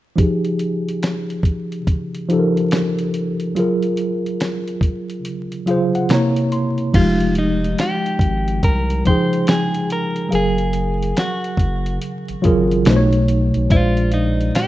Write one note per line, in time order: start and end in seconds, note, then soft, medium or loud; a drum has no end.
0.16 1.79 F3 medium
0.16 1.79 D#4 medium
0.16 1.80 G4 medium
0.16 kick loud
0.16 closed hi-hat medium
0.20 1.81 G#4 medium
0.45 closed hi-hat soft
0.59 closed hi-hat medium
0.89 closed hi-hat soft
1.03 finger snap medium
1.03 snare medium
1.03 closed hi-hat medium
1.30 closed hi-hat soft
1.43 kick medium
1.43 closed hi-hat medium
1.72 closed hi-hat soft
1.87 kick medium
1.87 closed hi-hat medium
2.15 closed hi-hat soft
2.28 3.50 F3 medium
2.28 3.51 D#4 medium
2.28 3.52 G4 medium
2.28 closed hi-hat medium
2.33 2.40 A4 medium
2.39 3.56 A#4 medium
2.57 closed hi-hat soft
2.71 finger snap medium
2.71 snare loud
2.71 closed hi-hat medium
2.99 closed hi-hat medium
3.14 closed hi-hat medium
3.40 closed hi-hat soft
3.55 5.17 F#3 medium
3.55 5.18 F4 medium
3.55 5.19 G#4 medium
3.55 closed hi-hat medium
3.59 5.19 A#4 medium
3.82 closed hi-hat soft
3.97 closed hi-hat medium
4.26 closed hi-hat soft
4.40 finger snap medium
4.40 snare loud
4.40 closed hi-hat medium
4.68 closed hi-hat soft
4.81 kick medium
4.81 closed hi-hat medium
5.10 closed hi-hat soft
5.25 closed hi-hat medium
5.52 closed hi-hat soft
5.66 6.09 F#3 medium
5.66 6.10 F4 medium
5.66 6.11 G#4 medium
5.66 5.93 F5 medium
5.66 closed hi-hat medium
5.71 6.11 C5 medium
5.95 6.09 F#5 medium
5.95 closed hi-hat soft
6.09 6.90 C3 medium
6.09 6.91 A#3 medium
6.09 6.92 E4 medium
6.09 6.50 A#5 medium
6.09 finger snap medium
6.09 snare loud
6.09 closed hi-hat medium
6.14 6.93 C#5 medium
6.36 closed hi-hat medium
6.52 6.92 C6 medium
6.52 closed hi-hat medium
6.78 closed hi-hat soft
6.93 7.75 F1 loud
6.93 8.55 F3 medium
6.93 8.56 D#4 medium
6.93 7.34 F4 loud
6.93 8.57 G4 medium
6.93 kick loud
6.93 closed hi-hat medium
6.93 crash medium
6.98 8.58 G#3 medium
7.20 closed hi-hat soft
7.35 7.81 D#4 medium
7.35 closed hi-hat medium
7.64 closed hi-hat soft
7.78 8.64 G4 medium
7.78 finger snap medium
7.78 snare loud
7.78 closed hi-hat medium
8.06 closed hi-hat soft
8.19 8.60 G#1 loud
8.19 kick medium
8.19 closed hi-hat medium
8.48 closed hi-hat soft
8.63 9.03 C2 medium
8.63 9.06 A#4 medium
8.63 kick medium
8.63 closed hi-hat medium
8.90 closed hi-hat soft
9.05 10.27 F3 medium
9.05 10.27 D#4 medium
9.05 9.49 C5 medium
9.05 10.28 G5 medium
9.05 kick medium
9.05 closed hi-hat medium
9.10 10.29 G#4 medium
9.33 closed hi-hat soft
9.47 9.92 G#4 medium
9.47 finger snap medium
9.47 snare loud
9.47 closed hi-hat medium
9.74 closed hi-hat medium
9.90 10.35 A#4 medium
9.90 closed hi-hat medium
10.16 closed hi-hat soft
10.29 11.13 F#1 loud
10.29 11.92 F#3 medium
10.29 11.94 G#4 medium
10.29 11.93 F5 medium
10.29 closed hi-hat medium
10.33 11.19 G#4 loud
10.33 11.95 A#4 medium
10.58 closed hi-hat soft
10.73 closed hi-hat medium
11.03 closed hi-hat soft
11.17 11.99 F#4 medium
11.17 finger snap medium
11.17 snare loud
11.17 closed hi-hat medium
11.44 closed hi-hat soft
11.57 11.98 F#1 medium
11.57 kick medium
11.57 closed hi-hat medium
11.86 closed hi-hat soft
12.02 closed hi-hat medium
12.28 12.35 G#1 soft
12.28 closed hi-hat soft
12.42 12.84 G#1 medium
12.42 12.85 F#3 medium
12.42 12.86 F4 medium
12.42 12.87 G#4 medium
12.42 kick loud
12.42 closed hi-hat medium
12.46 12.87 A#4 medium
12.71 closed hi-hat soft
12.85 13.52 B1 loud
12.85 13.67 B2 medium
12.85 13.67 A3 medium
12.85 13.68 D#4 medium
12.85 finger snap medium
12.85 snare loud
12.85 closed hi-hat medium
12.90 12.96 C5 medium
12.96 13.72 C#5 medium
13.13 closed hi-hat medium
13.28 closed hi-hat medium
13.54 13.70 B1 medium
13.54 closed hi-hat soft
13.69 14.51 A#1 loud
13.69 14.68 A#2 medium
13.69 14.68 G#3 medium
13.69 14.10 F4 loud
13.69 14.68 D5 medium
13.69 kick loud
13.69 closed hi-hat medium
13.74 14.68 C5 medium
13.97 closed hi-hat soft
14.12 14.57 D#4 medium
14.12 closed hi-hat medium
14.41 closed hi-hat soft
14.55 14.68 G4 medium
14.55 finger snap medium
14.55 snare loud
14.55 closed hi-hat medium